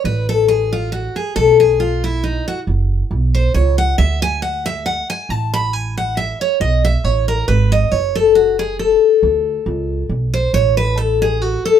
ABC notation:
X:1
M:3/4
L:1/8
Q:"Swing" 1/4=137
K:F#m
V:1 name="Steel-string acoustic guitar"
B A G =F ^F G | A G ^E =E ^D F | z3 =c ^c f | e g f e f g |
a b g f e c | ^d e c ^A B d | c A F G A2- | A4 z =c |
c B A G F A |]
V:2 name="Upright bass" clef=bass
A,,,6 | B,,,6 | F,,,2 B,,,2 C,,2 | D,,6 |
A,,,6 | B,,,2 A,,,2 G,,,2 | F,,,6 | D,,2 C,,2 B,,,2 |
A,,,6 |]